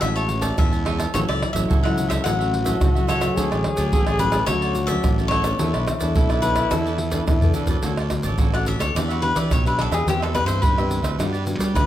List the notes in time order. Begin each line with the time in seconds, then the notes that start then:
Already playing: F#4
0.01 A1 A2 G#3 C#4 E4 G#4 C#5 E5 A5, pandeiro, tamborim, shaker, surdo
0.16 C#5 E5 A5, pandeiro, shaker
0.29 muted cavaquinho stroke, pandeiro, shaker
0.41 C#5 D5 E5 A5, pandeiro, shaker, surdo
0.58 E2 E3 G#3 C#4 E4 E5, pandeiro, tamborim, shaker, surdo
0.72 C#5 E5 A5, pandeiro, shaker
0.85 G#3 C#4 E4 G#4 C#5 E5 A5, pandeiro, tamborim
0.98 C#5 E5 A5, pandeiro, tamborim, shaker
1.14 A1 A2 F#3 C#4 E4 F#4 A4 C#5 E5, pandeiro, shaker, surdo
1.29 C#2 A4 C#5 D5 E5, pandeiro, tamborim, shaker
1.41 muted cavaquinho stroke, pandeiro, tamborim, surdo
1.53 A1 F#3 C#4 E4 A4 C#5 E5, pandeiro, shaker, surdo
1.68 C#2 A2 F#4 A4 C#5 E5, pandeiro, shaker, surdo
1.83 F#3 C#4 E4 A4 C#5 E5 F#5, pandeiro, tamborim, shaker
1.98 pandeiro, shaker
2.08 A4 C#5 E5, pandeiro, tamborim, shaker, surdo
2.24 A1 A2 F#3 C#4 E4 F#4 A4 C#5 E5 F#5, pandeiro, tamborim, shaker, surdo
2.39 A4 C#5 E5, pandeiro, shaker
2.52 muted cavaquinho stroke, pandeiro
2.65 F#3 C#4 E4 A4 C#5 E5, pandeiro, shaker, surdo
2.81 C#2 A2, pandeiro, tamborim, shaker, surdo
2.95 F#3 C#4 E4 A4 C#5 E5, pandeiro, shaker
3.07 F#4 A4 C#5 E5, pandeiro, tamborim, shaker, surdo
3.21 F#3 A3 C#4 A4 C#5 E5, pandeiro, tamborim, shaker
3.36 D2 D3 F#4 G#4 A4 C#5 D5, pandeiro, shaker, surdo
3.51 A1 A4 C#5 D5, pandeiro, tamborim, shaker
3.62 muted cavaquinho stroke, pandeiro, tamborim, surdo
3.77 D2 F#3 A3 C#4 A4 C#5 D5, pandeiro, shaker, surdo
3.93 A1 A2 F#4 A4 C#5 D5, pandeiro, shaker, surdo
4.07 A4 C#5 D5, pandeiro, tamborim, shaker
4.19 F#3 A3 C#4 B4, pandeiro, shaker
4.32 A4 C#5 D5, pandeiro, tamborim, shaker, surdo
4.46 D2 D3 F#3 A3 F#4 A4 C#5 D5, pandeiro, tamborim, shaker, surdo
4.51 C#4
4.61 A4 C#5 D5, pandeiro, shaker
4.75 muted cavaquinho stroke, pandeiro, shaker
4.87 F#3 A3 A4 C#5 D5 E5, pandeiro, shaker, surdo
4.91 C#4
5.04 A1 A2, pandeiro, tamborim, shaker, surdo
5.18 F#3 A3 C#4 A4 C#5 D5, pandeiro, shaker
5.28 F#4 A4 C#5, pandeiro, tamborim, surdo
5.33 D5
5.44 B3 D4 A4 C#5 D5, pandeiro, tamborim, shaker
5.58 E2 E4 A4 B4 D5, pandeiro, shaker, surdo
5.62 E3
5.73 B1 A4 B4 D5, pandeiro, tamborim, shaker
5.86 muted cavaquinho stroke, pandeiro, tamborim, shaker, surdo
5.99 E2 B3 D4 A4 B4 D5, pandeiro, shaker, surdo
6.15 B1 B2 E4 A4 B4 D5, pandeiro, shaker, surdo
6.29 A4 B4 D5, pandeiro, tamborim, shaker
6.42 B3 D4 A4 B4, pandeiro, shaker
6.54 A4 B4 D5, pandeiro, tamborim, shaker, surdo
6.70 E2 E3 B3 D4 E4 A4 B4 D5, pandeiro, tamborim, shaker, surdo
6.85 A4 B4 D5, pandeiro, shaker
6.98 muted cavaquinho stroke, pandeiro
7.11 B3 D4 A4 B4 D5, pandeiro, shaker, surdo
7.28 E2 B2 E4, pandeiro, tamborim, shaker, surdo
7.41 B3 D4 A4 B4 D5, surdo, pandeiro, shaker
7.54 D4 E4 A4 B4 D5, pandeiro, shaker
7.67 A3 C#4 F#4 A4 B4 D5, pandeiro, shaker, surdo
7.83 D2 D3 F#4 A4 C#5 D5, pandeiro, shaker, surdo
7.97 A4 C#5 D5, pandeiro, tamborim, shaker
8.10 A3 C#4 F#4, muted cavaquinho stroke, pandeiro, tamborim, shaker, surdo
8.23 A1 A4 C#5 D5, pandeiro, shaker, surdo
8.38 A1 A2 F#4 A4 C#5 D5, pandeiro, shaker, surdo
8.53 A3 C#4 F#4 A4 C#5 D5 F#5, pandeiro, tamborim, shaker
8.66 E5, pandeiro, shaker
8.79 D2 A4 C#5 D5, pandeiro, tamborim, shaker, surdo
8.94 E2 E3 B3 D4 G4 B4 D5 E5, pandeiro, tamborim, shaker, surdo
9.09 F#4 G4 B4 E5, pandeiro, shaker
9.22 B3 D4 G4 B4, muted cavaquinho stroke, pandeiro
9.35 E3 G4 B4 D5 E5, pandeiro, shaker, surdo
9.51 B1 B2 C#5, pandeiro, tamborim, shaker, surdo
9.66 B3 D4 G4 B4 E5, pandeiro, shaker
9.78 D4 G4 A4 B4 E5, pandeiro, tamborim, surdo
9.91 E2 G4 G#4 B4 E5, pandeiro, tamborim, shaker
10.06 E2 E3 B3 C4 G4 B4 C5 E5, pandeiro, shaker, surdo
10.20 A4 B4 C5 E5, pandeiro, tamborim, shaker
10.35 B3 C4 G4 B4, pandeiro, tamborim, shaker, surdo
10.46 G2 B4 C5 E5, pandeiro, shaker, surdo
10.62 G2 E3 G4 B4 C5 E5, pandeiro, shaker, surdo
10.77 B3 C4 G4 B4 C5 E5, pandeiro, tamborim, shaker
10.91 pandeiro, shaker
11.02 D2 B4 C5 E5, pandeiro, tamborim, shaker, surdo
11.18 G2 G3 B3 D4 F#4 G4 B4 D5, pandeiro, tamborim, shaker, surdo
11.32 G4 B4 D5, pandeiro, shaker
11.45 B3 D4 F#4, muted cavaquinho stroke, pandeiro, shaker
11.58 G3 G4 B4 D5, pandeiro, shaker, surdo
11.74 D2 D3 B4, pandeiro, tamborim, shaker, surdo